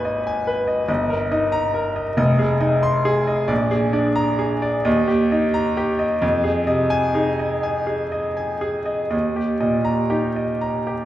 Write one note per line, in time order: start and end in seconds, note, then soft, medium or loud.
0.00 0.84 G#1 medium
0.00 0.91 D#2 soft
0.00 0.91 D#4 medium
0.00 0.47 B4 medium
0.00 0.05 D#5 medium
0.00 0.27 G#5 medium
0.05 0.38 D#5 soft
0.27 0.60 G#5 medium
0.47 0.81 B4 medium
0.67 0.87 D#5 medium
0.88 2.14 G1 medium
0.88 1.23 D#5 medium
1.10 1.44 A#4 soft
1.32 2.00 D#4 medium
1.32 1.66 D#5 medium
1.52 1.87 A#5 medium
1.74 2.09 A#4 medium
1.96 2.16 D#5 medium
2.17 3.46 F1 medium
2.17 2.53 D#5 medium
2.39 2.75 G#4 medium
2.60 3.32 D#4 medium
2.60 2.96 D#5 medium
2.83 3.19 C6 medium
3.05 3.41 G#4 medium
3.27 3.50 D#5 medium
3.48 4.81 A#1 medium
3.48 3.85 D5 medium
3.71 4.08 G#4 medium
3.93 4.66 D4 medium
3.93 4.30 D5 medium
4.16 4.53 A#5 medium
4.39 4.76 G#4 medium
4.62 4.85 D5 medium
4.85 6.18 D#2 medium
4.85 5.22 D#5 medium
5.08 5.45 G4 medium
5.32 6.04 D#4 medium
5.32 5.68 D#5 medium
5.54 5.90 A#5 medium
5.77 6.13 G4 medium
5.99 6.20 D#5 medium
6.22 9.09 F2 medium
6.22 6.59 D#5 medium
6.44 6.82 G#4 medium
6.67 7.44 C3 soft
6.67 7.05 D#5 medium
6.90 7.29 G#5 medium
7.14 7.92 D#4 medium
7.14 7.53 G#4 medium
7.39 7.78 D#5 medium
7.63 8.03 G#5 medium
7.87 8.27 G#4 soft
8.12 8.52 D#5 soft
8.37 8.77 G#5 medium
8.61 9.02 G#4 medium
8.86 9.09 D#5 medium
9.10 11.05 D#2 medium
9.10 9.52 D#5 medium
9.36 9.77 G4 soft
9.60 10.42 A#2 soft
9.60 10.02 D#5 soft
9.85 10.26 A#5 medium
10.10 10.92 D#4 soft
10.10 10.51 G4 medium
10.36 10.77 D#5 soft
10.61 11.02 A#5 medium
10.87 11.05 G4 soft